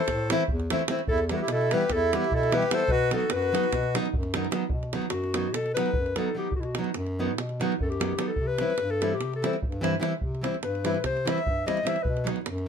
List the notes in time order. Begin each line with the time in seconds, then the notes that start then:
Already playing: A4 C5
0.08 A2, davul high, davul low
0.30 E3 A3 C4 E4, davul high
0.41 davul high
0.48 E2, davul low
0.60 davul high
0.70 E3 A3 C4 E4, davul high
0.79 davul high
0.88 E3 A3 C4 E4, davul high
0.99 davul high
1.07 E2 E4 A4, davul low
1.18 davul high
1.29 E3 G3 B3 E4 A4, davul high
1.36 F#4
1.41 E4 G4
1.47 B2, davul high
1.52 E4 A4
1.61 davul high
1.71 E3 G3 B3 E4 G4 B4, davul high
1.81 davul high
1.89 E2 A4, davul high, davul low
1.95 E4
2.13 E3 G3 B3 E4 G4, davul high
2.17 E4
2.24 davul high
2.30 B2, davul low
2.34 E4 A4
2.43 davul high
2.51 E3 G3 B3 E4 B4, davul high
2.57 G4
2.62 davul high
2.71 E3 G3 B3 E4 A4 C5, davul high
2.80 davul high
2.88 B2 F#4 B4, davul low
3.11 D#3 F#3 B3 D#4 A4, davul high
3.16 F#4, davul high
3.29 F#2 B4, davul high
3.35 F#4
3.42 davul high
3.52 D#3 F#3 B3 D#4, davul high
3.64 davul high
3.72 B2, davul high, davul low
3.83 davul high
3.94 D#3 F#3 B3 D#4, davul high
4.06 davul high
4.12 F#2, davul low
4.23 davul high
4.34 D#3 F#3 B3 D#4, davul high
4.45 davul high
4.51 D#3 F#3 B3 D#4, davul high
4.69 B2, davul low
4.83 davul high
4.93 D#3 F#3 B3 D#4, davul high
5.02 davul high
5.10 F#2 F#4, davul high
5.24 davul high
5.34 D#3 F#3 B3 D#4, davul high
5.53 B2 A4, davul high
5.66 davul high
5.74 D#3 F#3 B3 D#4 B4, davul high
5.86 davul high
5.93 F#2, davul low
6.06 davul high
6.16 D#3 F#3 B3 D#4 A4, davul high
6.34 D#3 F#3 B3 D#4 G4
6.52 B2, davul low
6.56 F#4
6.60 E4, davul high
6.65 F#4
6.75 D#3 F#3 B3 D#4, davul high
6.84 davul high
6.94 F#2, davul high
7.07 davul high
7.19 D#3 F#3 B3 D#4
7.38 B2, davul high
7.49 davul high
7.60 D#3 F#3 B3 D#4, davul high
7.72 davul high
7.79 F#2 A4, davul low
7.90 G4, davul high
8.00 D#3 F#3 B3 D#4, davul high
8.18 D#3 F#3 B3 D#4, davul high
8.27 A4
8.36 C3, davul low
8.47 B4
8.58 E3 G3 C4 E4, davul high
8.70 davul high
8.78 G2, davul high
8.90 A4, davul high
9.01 E3 G3 C4 E4, davul high
9.14 G4
9.21 C3, davul high
9.33 A4, davul high
9.42 E3 G3 C4 E4, davul high
9.53 davul high
9.62 G2, davul low
9.72 davul high
9.81 E3 G3 C4 E4, davul high
10.00 E3 G3 C4 E4, davul high
10.21 C3, davul low
10.35 davul high
10.41 E3 G3 C4 E4, davul high
10.54 davul high
10.62 G2 B4, davul high
10.75 davul high
10.84 E3 G3 C4 E4, davul high
10.94 davul high
11.04 C3 C5, davul high, davul low
11.17 davul high
11.25 E3 G3 C4 E4 E5, davul high
11.38 davul high
11.46 G2, davul low
11.66 E3 G3 C4 E4 D#5, davul high
11.77 davul high
11.83 E3 G3 C4 E4, davul high
11.87 E5
11.96 davul high
12.03 B2 B4, davul low
12.17 davul high
12.24 D#3 F#3 B3 D#4, davul high
12.36 davul high
12.44 F#2, davul high
12.58 davul high